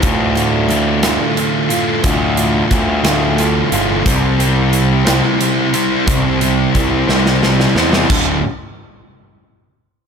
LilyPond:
<<
  \new Staff \with { instrumentName = "Distorted electric guitar" } { \time 6/8 \key d \minor \tempo 4. = 59 <d, a, d a f'>8 <d a f'>8 <a, d a f'>8 <d, a, d a f'>4 <d a f'>8 | <d, a, d a f'>8 <d a f'>8 <a, d a f'>8 <d, a, d a f'>4 <d a f'>8 | <c g c' e' g' c''>8 <c' e' g' c''>8 <c' e' g' c''>8 <c g c' e' g' c''>4 <c' e' g' c''>8 | <c g c' e' g' c''>8 <c' e' g' c''>8 <c' e' g' c''>8 <c g c' e' g' c''>4 <c' e' g' c''>8 |
<d, a, d>8 r2 r8 | }
  \new Staff \with { instrumentName = "Distorted electric guitar" } { \time 6/8 \key d \minor <d, a, d a f'>8 <d a f'>4 <d, a, d a f'>8 <a, d a f'>8 <d a f'>8 | <d, a, d a f'>8 <d a f'>4 <d, a, d a f'>8 <a, d a f'>8 <d a f'>8 | <c g c' e' g' c''>8 <c' e' g' c''>4 <c g c' e' g' c''>8 <c' e' g' c''>8 <c' e' g' c''>8 | <c g c' e' g' c''>8 <c' e' g' c''>4 <c g c' e' g' c''>8 <c' e' g' c''>8 <c' e' g' c''>8 |
<d, a, d>8 r2 r8 | }
  \new Staff \with { instrumentName = "Steel-string acoustic guitar" } { \time 6/8 \key d \minor d,8 d8 a8 f'8 a8 f'8 | d,8 d8 a8 f'8 a8 f'8 | r2. | r2. |
r2. | }
  \new Staff \with { instrumentName = "Picked electric bass" } { \clef bass \time 6/8 \key d \minor d,2 r4 | d,4 d,8 d,4 g,,8 | c,2 r4 | c,4 c,8 c,4 e,8 |
d,,8 r2 r8 | }
  \new DrumStaff \with { instrumentName = "Drums" } \drummode { \time 6/8 <hh bd>8 hh8 hh8 <hh sn>8 hh8 hh8 | <hh bd>8 hh8 <hh bd>8 <hh sn>8 hh8 hh8 | <hh bd>8 hh8 hh8 <hh sn>8 hh8 hh8 | <hh bd>8 hh8 <hh bd>8 sn16 sn16 sn16 sn16 sn16 sn16 |
<cymc bd>4. r4. | }
>>